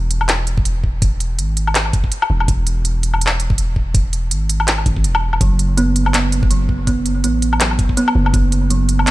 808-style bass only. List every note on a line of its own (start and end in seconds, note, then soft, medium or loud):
0.00 1.40 E1 medium
1.39 1.92 G#1 medium
2.30 2.47 E1 loud
2.48 4.33 E1 loud
4.31 4.85 G#1 medium
4.86 5.06 G#1 loud
5.04 5.40 E1 medium
5.41 7.25 F#1 loud
7.24 7.78 A1 medium
8.15 8.32 F#1 loud
8.34 9.11 F#1 loud